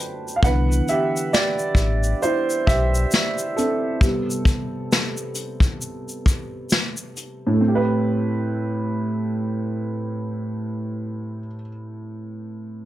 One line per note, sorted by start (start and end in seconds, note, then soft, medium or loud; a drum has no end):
0.00 0.39 D3 medium
0.00 0.39 F#3 medium
0.00 0.39 D4 medium
0.00 0.45 B4 medium
0.00 0.46 C5 medium
0.00 0.46 G5 loud
0.00 0.45 A5 loud
0.00 closed hi-hat medium
0.00 shaker soft
0.28 shaker soft
0.36 0.43 F5 medium
0.43 0.81 C2 loud
0.43 1.05 D3 medium
0.43 1.06 E3 medium
0.43 1.06 B3 medium
0.43 0.86 B4 medium
0.43 0.90 F#5 loud
0.43 kick loud
0.43 shaker medium
0.72 shaker medium
0.88 1.31 G4 medium
0.88 1.35 E5 medium
0.88 closed hi-hat medium
0.88 shaker soft
1.16 shaker medium
1.33 2.19 G4 medium
1.33 2.25 D5 loud
1.33 snare loud
1.33 shaker medium
1.59 shaker soft
1.75 2.14 A1 medium
1.75 kick medium
1.75 closed hi-hat medium
1.75 shaker soft
2.04 shaker soft
2.22 2.65 E4 medium
2.22 2.68 C5 loud
2.22 shaker medium
2.50 shaker soft
2.67 3.06 B1 medium
2.67 3.53 G4 medium
2.67 3.59 E5 loud
2.67 kick medium
2.67 closed hi-hat medium
2.67 shaker soft
2.95 shaker medium
3.11 snare medium
3.11 shaker medium
3.38 shaker medium
3.56 7.12 C4 medium
3.56 7.11 A4 medium
3.56 closed hi-hat medium
3.56 shaker soft
4.01 5.32 C3 medium
4.01 5.32 G3 medium
4.01 5.33 B3 medium
4.01 kick loud
4.01 shaker medium
4.30 shaker medium
4.45 kick medium
4.45 closed hi-hat medium
4.45 shaker soft
4.92 snare loud
4.92 shaker medium
5.17 shaker soft
5.35 closed hi-hat medium
5.35 shaker soft
5.60 kick medium
5.60 shaker soft
5.81 shaker medium
6.09 shaker soft
6.26 kick medium
6.26 closed hi-hat medium
6.26 shaker medium
6.70 snare loud
6.70 shaker medium
6.97 shaker medium
7.17 closed hi-hat medium
7.17 shaker soft
7.47 11.39 A2 medium
7.54 11.46 A3 medium
7.61 11.53 C4 medium
7.68 11.60 G4 medium
7.75 11.68 B4 medium